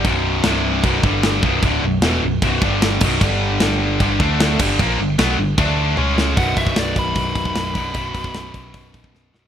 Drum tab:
CC |x---x---x---x---|x---x---x---x-x-|x---x---x---x-x-|x---x---x-------|
HH |----------------|----------------|----------------|----------------|
SD |----o-------o---|----o-------o---|----o-------o---|----o---------o-|
T1 |----------------|----------------|----------------|------------o---|
BD |o-------o-o---o-|o-------o-o---o-|o-------o-o---o-|o-------o-------|

CC |----------------|----------------|
HH |o-o-o-o-o-o-o-o-|o-o-o-o-o-o-----|
SD |----o-------o---|----o-------o-o-|
T1 |----------------|----------------|
BD |o-oo--o-o-oo--o-|o-oo--o-o-oo----|